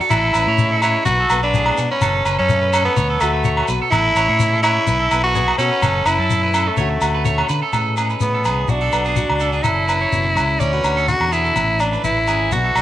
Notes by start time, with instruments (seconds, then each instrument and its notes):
0.01 steel-string acoustic guitar F#4, clean electric guitar A4
0.10 fingered electric bass A1, steel-string acoustic guitar A2, tenor saxophone E4, clean electric guitar A4, low agogo, shekere
0.34 fingered electric bass A1, steel-string acoustic guitar C#4, clean electric guitar B4, low agogo, shekere
0.47 fingered electric bass A2, clean electric guitar C#5
0.58 steel-string acoustic guitar E3 G#3, shekere
0.72 clean electric guitar A4
0.82 steel-string acoustic guitar C#4, tenor saxophone E4, clean electric guitar C#5, low agogo, shekere
1.06 fingered electric bass B1, steel-string acoustic guitar B2, tenor saxophone F#4, clean electric guitar B4, shekere
1.20 clean electric guitar A4
1.30 fingered electric bass B1, steel-string acoustic guitar B3, low agogo, shekere
1.43 tenor saxophone D4, clean electric guitar B4
1.54 steel-string acoustic guitar A2, clean electric guitar G#4, shekere
1.66 low agogo
1.77 steel-string acoustic guitar G#2, fingered electric bass B2, muted clean electric guitar stroke, shekere
1.91 tenor saxophone C#4, clean electric guitar B4
2.01 fingered electric bass F#1, steel-string acoustic guitar F#2, clean electric guitar A4, low agogo, shekere
2.25 fingered electric bass F#1, steel-string acoustic guitar C#4, clean electric guitar B4, low agogo, shekere
2.38 fingered electric bass F#2, tenor saxophone C#4, clean electric guitar A4
2.49 steel-string acoustic guitar F#3 A3, shekere
2.62 clean electric guitar B4
2.73 steel-string acoustic guitar C#4, clean electric guitar A4, low agogo, shekere
2.85 tenor saxophone B3
2.96 fingered electric bass D2, steel-string acoustic guitar D3, clean electric guitar C#5, shekere
3.10 clean electric guitar A4
3.21 fingered electric bass D2, tenor saxophone A3, steel-string acoustic guitar F#4, low agogo, shekere
3.33 clean electric guitar B4
3.44 clean electric guitar C#5, muted steel-string acoustic guitar stroke, shekere
3.57 low agogo
3.68 fingered electric bass B1, steel-string acoustic guitar B2, clean electric guitar B4, shekere
3.82 clean electric guitar A4
3.91 fingered electric bass A1, steel-string acoustic guitar A2, tenor saxophone E4, clean electric guitar A4, low agogo, shekere
4.15 fingered electric bass A1, steel-string acoustic guitar C#4, clean electric guitar C#5, low agogo, shekere
4.29 fingered electric bass A2, clean electric guitar C#5
4.39 steel-string acoustic guitar E3 G#3, shekere
4.53 clean electric guitar A4
4.63 steel-string acoustic guitar C#4, tenor saxophone E4, clean electric guitar C#5, low agogo, shekere
4.87 fingered electric bass B1, steel-string acoustic guitar B2, clean electric guitar B4, shekere
5.00 clean electric guitar A4
5.11 fingered electric bass B1, steel-string acoustic guitar B3, low agogo, shekere
5.24 tenor saxophone F#4, clean electric guitar B4
5.35 steel-string acoustic guitar D3 B3, clean electric guitar G#4, shekere
5.48 low agogo
5.58 fingered electric bass B2, tenor saxophone C#4, steel-string acoustic guitar F#4, clean electric guitar A4, shekere
5.71 clean electric guitar B4
5.82 fingered electric bass F#1, steel-string acoustic guitar F#2, clean electric guitar A4, low agogo, shekere
6.05 fingered electric bass F#1, steel-string acoustic guitar C#4, tenor saxophone E4, clean electric guitar B4, low agogo, shekere
6.18 fingered electric bass F#2, clean electric guitar A4
6.30 steel-string acoustic guitar F#3 A3, shekere
6.44 clean electric guitar B4
6.54 steel-string acoustic guitar C#4, clean electric guitar A4, low agogo, shekere
6.68 tenor saxophone A3
6.77 fingered electric bass D2, steel-string acoustic guitar D3 A3 C#4 F#4, clean electric guitar C#5, shekere
6.91 muted clean electric guitar stroke
7.01 fingered electric bass D2, steel-string acoustic guitar F#4, low agogo, shekere
7.14 clean electric guitar B4
7.25 steel-string acoustic guitar A3 C#4, clean electric guitar C#5, shekere
7.38 low agogo
7.49 fingered electric bass D3, clean electric guitar B4, muted steel-string acoustic guitar stroke, shekere
7.62 clean electric guitar A4
7.73 fingered electric bass A2, steel-string acoustic guitar A2 E3 G#3 C#4 G#4, clean electric guitar A4, low agogo, shekere
7.97 steel-string acoustic guitar C#4, clean electric guitar G#4, low agogo, shekere
8.10 clean electric guitar B4, shekere
8.20 fingered electric bass A2, steel-string acoustic guitar E3 G#4, tenor saxophone B3, shekere
8.34 clean electric guitar A4
8.45 fingered electric bass C2, steel-string acoustic guitar C#4, clean electric guitar G#4, low agogo, shekere
8.68 fingered electric bass B1, steel-string acoustic guitar B2 E4, tenor saxophone D4, clean electric guitar F#4, shekere
8.81 steel-string acoustic guitar F#4, clean electric guitar A4
8.92 fingered electric bass B1, steel-string acoustic guitar B3, low agogo, shekere
9.05 steel-string acoustic guitar D4, clean electric guitar G#4, shekere
9.16 clean electric guitar F#4, steel-string acoustic guitar F#4, shekere
9.30 fingered electric bass C#2, low agogo
9.40 steel-string acoustic guitar D4, clean electric guitar A4, shekere
9.53 clean electric guitar G#4, shekere
9.63 fingered electric bass F#1, steel-string acoustic guitar F#2, tenor saxophone E4, clean electric guitar A4, muted steel-string acoustic guitar stroke, low agogo, shekere
9.88 steel-string acoustic guitar C#4, clean electric guitar B4, low agogo, shekere
10.01 clean electric guitar C#5
10.12 fingered electric bass F#1, steel-string acoustic guitar B2, shekere
10.25 muted clean electric guitar stroke
10.35 fingered electric bass C#2, steel-string acoustic guitar C#3, muted clean electric guitar stroke, low agogo, shekere
10.60 fingered electric bass D2, steel-string acoustic guitar D3 E4, tenor saxophone C#4, clean electric guitar D5, shekere
10.73 steel-string acoustic guitar F#4, clean electric guitar B4
10.83 fingered electric bass D2, steel-string acoustic guitar F#4, low agogo, shekere
10.97 clean electric guitar A4, shekere
11.08 steel-string acoustic guitar C#3, tenor saxophone F#4, shekere
11.20 fingered electric bass E2, low agogo
11.32 steel-string acoustic guitar B2, tenor saxophone E4, clean electric guitar G#4, shekere
11.44 clean electric guitar A4, shekere
11.55 fingered electric bass A1, steel-string acoustic guitar A2 C#4, muted clean electric guitar stroke, low agogo, shekere
11.80 steel-string acoustic guitar C#4, tenor saxophone D4, muted clean electric guitar stroke, low agogo, shekere
11.93 clean electric guitar B4, shekere
12.03 fingered electric bass A1, steel-string acoustic guitar E3, tenor saxophone E4, muted steel-string acoustic guitar stroke, shekere
12.17 steel-string acoustic guitar C#4, muted clean electric guitar stroke
12.28 fingered electric bass G#1, steel-string acoustic guitar C#4, clean electric guitar G#4, low agogo, shekere
12.52 fingered electric bass B1, steel-string acoustic guitar B2 D4, clean electric guitar F#4, tenor saxophone F#4, shekere
12.64 clean electric guitar A4
12.75 fingered electric bass B1, steel-string acoustic guitar D4, low agogo, shekere